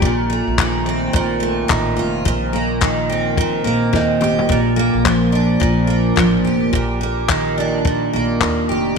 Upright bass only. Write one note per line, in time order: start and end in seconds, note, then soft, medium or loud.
0.02 0.43 A#1 medium
0.47 1.11 A#1 medium
1.14 1.66 A#1 loud
1.70 1.96 A1 medium
1.98 2.24 F1 medium
2.26 3.62 A#1 loud
3.66 3.91 A#1 medium
3.94 4.19 D#2 medium
4.23 4.48 F1 medium
4.50 4.91 A#1 medium
4.94 5.58 A#1 medium
5.62 6.13 A#1 medium
6.17 6.43 A1 medium
6.46 6.72 F1 medium
6.73 8.09 A#1 medium
8.14 8.39 A#1 medium
8.41 8.67 D#2 medium
8.70 8.95 F1 medium